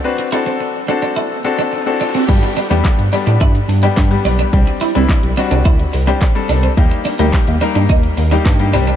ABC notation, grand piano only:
X:1
M:4/4
L:1/16
Q:1/4=107
K:G
V:1 name="Grand piano"
[CDFB]2 [CDFA]3 z [CDFA]3 z [CDFA]2 z [CDFA]2 z | [G,B,DG]2 z [G,B,DG]2 z [G,B,DG]4 z [G,B,DG]2 [G,B,DG]2 z | [G,CDG]2 z [G,CDE]2 z [G,CDF]4 z [G,CDG]2 [G,CDA]2 z | [G,_B,_EG]2 z [G,B,EG]2 z [G,B,E_B]4 z [G,B,EG]2 [G,B,EG] [G,CDG]2 |]